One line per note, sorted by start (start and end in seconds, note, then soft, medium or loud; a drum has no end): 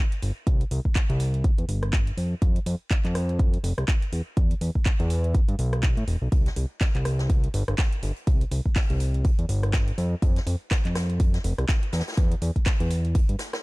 0.12 closed hi-hat medium
0.22 0.32 G1 medium
0.22 open hi-hat medium
0.47 0.64 C2 medium
0.47 kick loud
0.47 closed hi-hat medium
0.61 closed hi-hat soft
0.71 0.80 C2 medium
0.71 open hi-hat loud
0.85 kick medium
0.96 kick loud
0.96 clap loud
0.96 closed hi-hat medium
1.10 1.51 C2 loud
1.10 closed hi-hat soft
1.20 open hi-hat medium
1.34 closed hi-hat soft
1.44 kick loud
1.44 closed hi-hat medium
1.58 1.65 E2 medium
1.58 closed hi-hat medium
1.69 2.12 G1 medium
1.69 open hi-hat loud
1.83 cross-stick medium
1.83 closed hi-hat soft
1.93 kick loud
1.93 clap loud
1.93 closed hi-hat medium
2.07 closed hi-hat soft
2.17 2.35 F2 medium
2.17 open hi-hat medium
2.42 2.59 F2 loud
2.42 kick loud
2.42 closed hi-hat medium
2.56 closed hi-hat soft
2.66 2.76 F2 medium
2.66 open hi-hat loud
2.91 kick loud
2.91 clap loud
2.91 closed hi-hat medium
3.05 3.58 F2 loud
3.05 clap soft
3.05 closed hi-hat soft
3.15 cross-stick medium
3.15 open hi-hat loud
3.29 closed hi-hat soft
3.39 kick loud
3.39 closed hi-hat medium
3.54 closed hi-hat soft
3.64 3.73 F1 loud
3.64 open hi-hat loud
3.78 3.85 C2 medium
3.78 cross-stick medium
3.78 closed hi-hat soft
3.88 kick loud
3.88 clap loud
3.88 closed hi-hat medium
4.02 closed hi-hat soft
4.12 4.22 E2 medium
4.12 open hi-hat medium
4.37 4.54 E2 medium
4.37 kick loud
4.37 closed hi-hat medium
4.51 closed hi-hat soft
4.61 4.71 E2 medium
4.61 open hi-hat loud
4.75 kick medium
4.86 kick loud
4.86 clap loud
4.86 closed hi-hat medium
5.00 5.41 E2 loud
5.00 closed hi-hat soft
5.10 open hi-hat medium
5.24 closed hi-hat soft
5.35 kick loud
5.35 closed hi-hat medium
5.49 5.55 G2 medium
5.49 closed hi-hat soft
5.59 5.97 B1 medium
5.59 open hi-hat loud
5.73 cross-stick medium
5.73 closed hi-hat soft
5.83 kick loud
5.83 clap loud
5.83 closed hi-hat medium
5.97 6.04 A2 loud
5.97 closed hi-hat soft
6.08 6.17 E1 medium
6.08 open hi-hat medium
6.22 6.29 B1 medium
6.32 6.49 C2 loud
6.32 kick loud
6.32 closed hi-hat medium
6.46 snare soft
6.46 closed hi-hat soft
6.56 6.66 C2 medium
6.56 closed hi-hat medium
6.56 open hi-hat loud
6.81 kick loud
6.81 snare medium
6.81 clap loud
6.81 closed hi-hat medium
6.95 7.48 C2 medium
6.95 clap soft
6.95 closed hi-hat soft
7.05 cross-stick medium
7.05 closed hi-hat medium
7.05 open hi-hat medium
7.19 snare medium
7.19 closed hi-hat soft
7.30 kick loud
7.30 closed hi-hat medium
7.44 closed hi-hat soft
7.54 7.63 G1 loud
7.54 closed hi-hat medium
7.54 open hi-hat loud
7.68 7.75 G1 medium
7.68 cross-stick medium
7.68 closed hi-hat soft
7.78 kick loud
7.78 snare loud
7.78 clap loud
7.78 closed hi-hat medium
7.92 closed hi-hat soft
8.03 8.12 G1 medium
8.03 closed hi-hat medium
8.03 open hi-hat medium
8.16 closed hi-hat soft
8.27 8.45 C2 loud
8.27 kick loud
8.27 closed hi-hat medium
8.41 closed hi-hat medium
8.51 8.61 C2 medium
8.51 closed hi-hat medium
8.51 open hi-hat loud
8.66 kick medium
8.76 kick loud
8.76 snare loud
8.76 clap loud
8.76 closed hi-hat medium
8.76 open hi-hat medium
8.90 9.31 C2 loud
8.90 closed hi-hat soft
9.00 closed hi-hat medium
9.00 open hi-hat medium
9.14 closed hi-hat soft
9.25 kick loud
9.25 closed hi-hat medium
9.39 9.46 E2 medium
9.39 closed hi-hat medium
9.49 9.92 G1 medium
9.49 closed hi-hat medium
9.49 open hi-hat loud
9.63 cross-stick medium
9.63 closed hi-hat soft
9.73 kick loud
9.73 snare loud
9.73 clap loud
9.73 closed hi-hat medium
9.88 closed hi-hat soft
9.98 10.15 F2 medium
9.98 closed hi-hat medium
9.98 open hi-hat medium
10.22 10.40 F2 loud
10.22 kick loud
10.22 closed hi-hat medium
10.36 snare soft
10.36 closed hi-hat medium
10.47 10.56 F2 medium
10.47 closed hi-hat medium
10.47 open hi-hat loud
10.71 kick loud
10.71 snare loud
10.71 clap loud
10.71 closed hi-hat medium
10.85 11.39 F2 loud
10.85 clap soft
10.85 closed hi-hat medium
10.95 cross-stick medium
10.95 snare loud
10.95 closed hi-hat medium
10.95 open hi-hat medium
11.10 closed hi-hat soft
11.20 kick loud
11.20 closed hi-hat medium
11.34 snare medium
11.34 closed hi-hat medium
11.44 11.54 F1 medium
11.44 closed hi-hat medium
11.44 open hi-hat loud
11.58 11.65 C2 medium
11.58 cross-stick medium
11.58 closed hi-hat soft
11.68 kick loud
11.68 snare loud
11.68 clap loud
11.68 closed hi-hat medium
11.83 closed hi-hat medium
11.92 12.02 E2 medium
11.92 snare medium
11.92 closed hi-hat medium
11.92 open hi-hat medium
12.00 snare medium
12.00 closed hi-hat medium
12.07 snare medium
12.07 closed hi-hat medium
12.12 snare medium
12.12 closed hi-hat medium
12.17 12.35 E2 loud
12.17 kick loud
12.17 closed hi-hat medium
12.32 closed hi-hat medium
12.42 12.51 E2 medium
12.42 closed hi-hat medium
12.42 open hi-hat loud
12.56 kick medium
12.56 closed hi-hat soft
12.66 kick loud
12.66 snare loud
12.66 clap loud
12.66 closed hi-hat medium
12.66 open hi-hat medium
12.80 13.21 E2 loud
12.80 closed hi-hat medium
12.91 closed hi-hat medium
12.91 open hi-hat medium
13.05 closed hi-hat soft
13.15 kick loud
13.15 closed hi-hat medium
13.29 13.36 G2 medium
13.29 closed hi-hat medium
13.39 snare loud
13.39 closed hi-hat medium
13.39 open hi-hat loud
13.53 cross-stick medium
13.53 snare loud
13.53 closed hi-hat soft
13.53 closed hi-hat medium